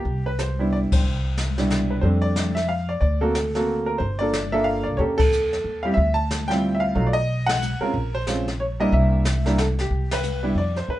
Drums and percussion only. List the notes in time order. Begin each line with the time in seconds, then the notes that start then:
0.05 brush sweep, kick
0.39 snare, hi-hat pedal
0.92 kick, ride
1.05 brush sweep
1.37 snare, hi-hat pedal
1.58 snare
1.70 snare, hi-hat pedal
2.03 brush sweep, kick
2.36 snare, hi-hat pedal
2.56 snare
3.02 brush sweep, kick
3.35 snare, hi-hat pedal
3.55 snare
4.00 brush sweep, kick
4.33 snare, hi-hat pedal
4.99 brush sweep, kick
5.19 kick, crash
5.32 hi-hat pedal
5.53 snare
5.98 brush sweep, kick
6.31 snare, hi-hat pedal
6.50 snare
6.96 brush sweep, kick
7.49 snare, ride
7.62 hi-hat pedal
7.94 brush sweep, kick
8.27 snare, hi-hat pedal
8.48 snare
8.93 brush sweep, kick
9.25 snare, hi-hat pedal
9.46 snare
9.58 snare, hi-hat pedal
9.79 snare
9.91 brush sweep, kick
10.11 snare, ride
10.23 hi-hat pedal
10.76 snare
10.88 brush sweep, kick